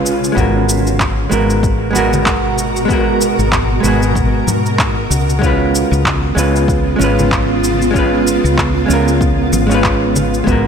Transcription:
Already playing: C#3 G#3 C#4 F4 B4
0.05 B1, shaker
0.24 shaker
0.32 G#3 B3
0.36 G#1 B2 F#4 A#4, kick, shaker
0.69 shaker
0.87 shaker
1.00 kick, clap, shaker
1.29 G#1 G#3 B3 F#4 A#4, high conga, shaker
1.50 shaker
1.63 kick, shaker
1.91 G#3 B3
1.95 F#4 A#4, high conga, shaker
2.13 low conga, shaker
2.26 kick, clap, shaker
2.58 shaker
2.76 shaker
2.85 G#3 B3
2.89 F#4 A#4, kick, shaker
3.21 shaker
3.39 G#1, shaker
3.52 kick, clap, shaker
3.80 G#1 G#3 B3, high conga
3.84 F#4 G#4, shaker
4.02 shaker
4.15 kick, shaker
4.47 G#2, high conga, shaker
4.66 shaker
4.79 kick, clap, shaker
5.10 C#2 C#3 B3 F4, shaker
5.30 shaker
5.39 G#3 C#4, kick
5.43 F4 B4, shaker
5.75 shaker
5.91 C#2, shaker
6.05 kick, clap, shaker
6.35 C#2 G#3 C#4 F4 B4, high conga, shaker
6.56 shaker
6.68 kick, shaker
6.96 G#1 G#3 C#4, high conga
7.01 F4 B4, shaker
7.19 low conga, shaker
7.31 kick, clap, shaker
7.64 shaker
7.82 shaker
7.91 G#3 C#4, kick
7.96 F4 B4, shaker
8.27 shaker
8.44 C#2, shaker
8.58 kick, clap, shaker
8.86 C#2 G#3 C#4, high conga
8.90 F4 A#4, shaker
9.08 shaker
9.21 kick, shaker
9.52 G#1, high conga, shaker
9.67 G#3 C#4
9.71 F4 B4, shaker
9.84 kick, clap, shaker
10.16 low conga, shaker
10.34 shaker
10.44 G#1 B2 G#3 B3 F#4 A#5, kick, shaker
10.49 F#4 A#4

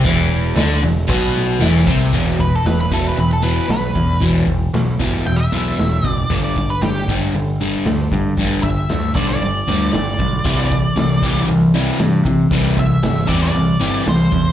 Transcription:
0.04 E1 E2 E3, kick, open hi-hat
0.31 open hi-hat
0.55 D2 D3 D4, snare, open hi-hat
0.82 E1 E2, open hi-hat
1.08 B1 B2 B3, kick, open hi-hat
1.36 snare, open hi-hat
1.60 E1 E2 E3, snare, open hi-hat
1.87 C2 C3 C4, kick, open hi-hat
2.13 E1 E2 B2 E3, kick, crash
2.39 E2 B2 B4, kick, open hi-hat
2.55 A4
2.65 E1 E2 B2 B4, snare, open hi-hat
2.81 B4
2.91 E1 E2 B2 E3 A4, kick, open hi-hat
3.07 B4
3.17 E1 E2 B2 B4, open hi-hat
3.33 A4
3.42 E2 B2 E3 B4, open hi-hat
3.68 B1 E2 B2 B4, snare, open hi-hat
3.95 E2 B2, kick, open hi-hat
4.21 E1 E2 B2 E3, kick, open hi-hat
4.47 E1 E2 B2, kick, open hi-hat
4.74 B1 E2 B2, snare, open hi-hat
4.99 G1 E2 B2 E3, kick, open hi-hat
5.26 E1 E2 B2 G5, open hi-hat
5.36 E5
5.52 B1 E2 B2 E3, open hi-hat
5.78 E1 E2 B2, snare, open hi-hat
6.04 F#1 E2 B2, kick, open hi-hat
6.09 D5
6.30 G1 G2 D3 G3, kick, open hi-hat
6.44 D5
6.56 G2 D3, kick, open hi-hat
6.70 B4
6.82 G1 G2 D3 G4, snare, open hi-hat
7.08 G1 G2 D3 G3, kick, open hi-hat
7.34 G1 G2 D3, open hi-hat
7.60 G2 D3 G3, open hi-hat
7.85 D2 G2 D3, snare, open hi-hat
8.11 G2 D3, kick, open hi-hat
8.37 G1 G2 D3 G3, kick, open hi-hat
8.63 G1 G2 D3 E5, kick, open hi-hat
8.89 D2 G2 D3, snare, open hi-hat
9.15 B1 G2 D3 G3 D5, kick, open hi-hat
9.29 D5
9.41 G1 G2 D3, open hi-hat
9.67 D2 G2 D3 G3, open hi-hat
9.92 G1 G2 D3 D5, snare, open hi-hat
10.07 snare
10.18 B1 G2 D3, kick, open hi-hat
10.44 C2 C3 E3 G3, kick, open hi-hat
10.71 C3 E3, kick, open hi-hat
10.96 C2 C3 E3, snare, open hi-hat
11.22 C2 C3 E3 G3, kick, open hi-hat
11.48 C2 C3 E3, open hi-hat
11.74 C3 E3 G3, open hi-hat
11.99 G2 C3 E3, snare, open hi-hat
12.25 C3 E3, kick, open hi-hat
12.51 C2 C3 E3 G3, kick, open hi-hat
12.77 C2 C3 E3 E5, kick, open hi-hat
13.03 G1 C3 E3, snare, open hi-hat
13.27 E2 C3 E3 G3 D5, kick, open hi-hat
13.42 D5
13.55 C2 C3 E3, open hi-hat
13.80 G1 C3 E3 G3, open hi-hat
14.06 C2 C3 E3 C5, snare, open hi-hat
14.32 E2 C3 E3, kick, open hi-hat

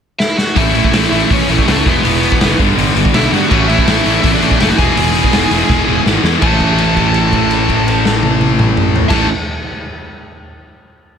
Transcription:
0.19 E4 E5, snare
0.37 F#4 F#5, snare
0.55 A1 A2 E3 A3 C#4 E4 E5, kick, open hi-hat
0.74 A2 E3 A3 C#4 E4, open hi-hat
0.84 kick
0.92 A1 A2 E3 A3 C#4 E4, snare, open hi-hat
1.11 A1 A2 E3 A3 C#4 E4, open hi-hat
1.29 A1 A2 E3 A3 C#4 E4 C#5, kick, open hi-hat
1.48 A1 A2 E3 A3 C#4 E4 A4, open hi-hat
1.58 kick
1.66 C#2 A2 E3 A3 C#4 E4, snare, open hi-hat
1.70 A4
1.85 E1 E2 B2 E3 G#3 B3 E4 B4, kick, open hi-hat
2.03 E1 E2 B2 E3 G#3 B3 E4, open hi-hat
2.22 E2 B2 E3 G#3 B3 E4, open hi-hat
2.32 kick
2.39 F#1 E2 B2 E3 G#3 B3 E4, snare, open hi-hat
2.57 G1 G2 D3 G3 B3 D4, kick, open hi-hat
2.76 G1 G2 D3 G3 B3 D4, open hi-hat
2.94 G1 G2 D3 G3 B3 D4, open hi-hat
3.05 kick
3.13 B1 G2 D3 G3 B3 D4 E4 E5, snare, open hi-hat
3.31 G2 D3 G3 B3 D4 F#4 F#5, open hi-hat
3.49 A1 A2 E3 A3 C#4 E4, kick, crash
3.68 A2 E3 A3 C#4 E4 E5, open hi-hat
3.78 kick
3.86 A1 A2 E3 A3 C#4 E4, snare, open hi-hat
4.05 A1 A2 E3 A3 C#4 E4, open hi-hat
4.21 A1 A2 E3 A3 C#4 E4 E5, kick, open hi-hat
4.31 D4 D5
4.41 A1 A2 E3 A3 C#4 E4, open hi-hat
4.51 kick
4.59 F#1 A2 E3 A3 C#4 E4 E5, snare, open hi-hat
4.68 F#4 F#5
4.77 E1 E2 B2 E3 G#3 B3 E4 G#4 G#5, kick, open hi-hat
4.96 E1 E2 B2 E3 G#3 B3 E4, open hi-hat
5.14 E2 B2 E3 G#3 B3 E4, open hi-hat
5.24 kick
5.32 E1 E2 B2 E3 G#3 B3 E4, snare, open hi-hat
5.50 E1 E2 B2 E3 G#3 B3 E4, open hi-hat
5.68 E1 E2 B2 E3 G#3 B3 E4, kick, snare
5.86 E1 E2 B2 E3 G#3 B3 E4
6.05 G#1 E2 B2 E3 G#3 B3 E4, snare
6.23 E2 B2 E3 G#3 B3 E4, snare
6.40 A1 A2 E3 A3 C#4 E4 A4 A5, kick, crash
6.60 kick, crash
6.78 crash
6.96 kick, crash
7.14 crash
7.32 kick, crash
7.51 crash
7.69 kick, crash
7.88 crash
8.05 snare
8.23 high tom
8.41 high tom
8.59 mid tom
8.77 mid tom
8.96 floor tom
9.09 A1 A2 E3 A3 C#4 E4 A4 A5, kick, snare, crash

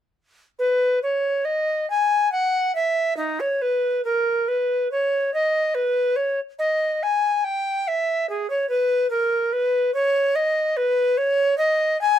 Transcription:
0.59 B4
1.03 C#5
1.45 D#5
1.90 G#5
2.32 F#5
2.75 E5
3.17 D#4
3.40 C#5
3.62 B4
4.05 A#4
4.48 B4
4.91 C#5
5.34 D#5
5.75 B4
6.16 C#5
6.59 D#5
7.03 G#5
7.44 G5
7.88 E5
8.30 G#4
8.50 C#5
8.69 B4
9.10 A#4
9.53 B4
9.94 C#5
10.35 D#5
10.77 B4
11.17 C#5
11.58 D#5
12.01 G#5

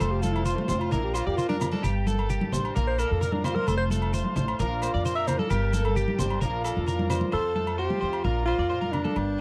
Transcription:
Already playing: F4 F5
0.00 F1 F2 F3 A3 C4 A4 C5 A5, low agogo, shekere
0.12 G4
0.22 A3 F4 A4, high conga, shekere
0.32 E4, low agogo
0.44 G2 F4 C5, shekere
0.56 A3, high conga
0.68 F1 A2 C4 C5, low conga, shekere
0.79 F4, low agogo
0.91 A#1 A#2 F3 A#3 D4 E4 A#4 D5 A#5, shekere
1.04 G4
1.14 A#3 F4 C5, low agogo, shekere
1.27 F2 G4 D5
1.37 C4 F4 C5, shekere
1.49 D4 A#4, high conga
1.60 F3 C4, low conga, low agogo, shekere
1.71 D4 A4, high conga
1.83 G1 G2 G4 G5 A5, low agogo, shekere
2.07 A#3 A4, high conga, shekere
2.19 low agogo
2.30 G4 A4, shekere
2.41 high conga
2.52 A1 G3 D4 C5, low conga, shekere
2.65 low agogo
2.74 A#1 A#2 A#4 D5 F5 A#5, shekere
2.88 C5
2.99 A#3 A4 A#4, low agogo, shekere
3.11 F2 A4
3.21 A2 A#4, shekere
3.32 D4, high conga
3.44 G2 F4 C5, low conga, low agogo, shekere
3.55 A#4, high conga
3.66 F1 F2 A4 C5 A5, low agogo, shekere
3.78 C5
3.90 A3 A4, high conga, shekere
4.02 low agogo
4.13 G2 C5, shekere
4.24 high conga
4.35 A1 A2 C5, low conga, shekere
4.48 low agogo
4.59 A#1 A#2 F3 A#3 D4 F4 A#4 D5 A#5, shekere
4.82 A#3 C5, low agogo, shekere
4.94 F2 D5
5.05 A#2 C5, shekere
5.15 A#4 E5
5.28 A2 C5, low conga, low agogo, shekere
5.39 A4, high conga
5.49 G1 G2 G4 A#4 G5 A5, low agogo, shekere
5.73 A#3 A4, high conga, shekere
5.84 A4, low agogo
5.96 D4 G4, shekere
6.08 high conga
6.19 G1 G3 D4 C5, high conga, low conga, shekere
6.30 low agogo
6.41 A#1 A#2 F3 A#3 D4 F4 A#4 D5 F5 A#5, shekere
6.64 A#3 A4, low agogo, shekere
6.77 F2
6.86 A2 A#4, shekere
6.99 high conga
7.10 G2 C5, low conga, low agogo, shekere
7.21 high conga
7.32 F2 A4 C5 F5 A5, low agogo
7.56 A3 A4, high conga
7.67 low agogo
7.78 C4 G4 C5
7.90 high conga
8.01 F2 F3 C4 C5
8.13 low agogo
8.24 A#1 A#2 F4 A#4 D5 A#5
8.46 A#3 F4 C5, low agogo
8.58 F2 D5
8.70 A#2 C5
8.81 A#4, high conga
8.92 D4, low conga, low agogo
9.04 A4, high conga
9.16 G1 G2 G5 A5, muted clean electric guitar stroke, low agogo

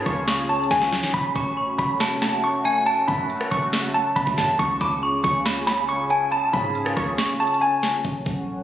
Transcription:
Already playing: C#3 C#4 F4 G#4
0.06 C#2 C#6, kick, cross-stick
0.28 C#6, snare, closed hi-hat
0.49 A5, closed hi-hat
0.56 closed hi-hat
0.64 closed hi-hat
0.71 C#2 G#5, kick, snare, closed hi-hat
0.82 snare
0.92 snare
1.03 B1, snare
1.14 F#1 A3 F#4 B5, kick, closed hi-hat
1.36 A1 B5 C#6, kick, closed hi-hat
1.57 C#6
1.78 F1 B5, kick, closed hi-hat
2.00 A5, snare, closed hi-hat
2.22 A5, snare, closed hi-hat
2.44 C#6, closed hi-hat
2.65 G#5, closed hi-hat
2.86 A5, closed hi-hat
3.08 F#2 B5, kick, open hi-hat
3.30 closed hi-hat
3.41 cross-stick
3.51 F#1 C#6, kick
3.73 snare, closed hi-hat
3.94 A5, closed hi-hat
4.16 F1 B5, kick, closed hi-hat
4.27 F#1, kick
4.38 F#2 A5, kick, snare
4.59 C#2 C#3 C#4 F4 G#4 C#6, kick, closed hi-hat
4.81 C#2 B5 D6, kick, closed hi-hat
5.03 C#6
5.24 C#2 C#6, kick, closed hi-hat
5.45 B5, snare, closed hi-hat
5.67 B5, snare, closed hi-hat
5.89 C#6, closed hi-hat
6.10 G#5 A5, closed hi-hat
6.32 A5 B5, closed hi-hat
6.53 G#2 B5, kick, open hi-hat
6.75 closed hi-hat
6.86 cross-stick
6.97 C#2 C#6, kick, cross-stick
7.18 C#6, snare, closed hi-hat
7.40 A5, closed hi-hat
7.47 closed hi-hat
7.54 closed hi-hat
7.61 G#5, closed hi-hat
7.83 snare
8.05 F#1 F#3 C#4 A4 F#5, kick, closed hi-hat
8.26 A1, kick, closed hi-hat

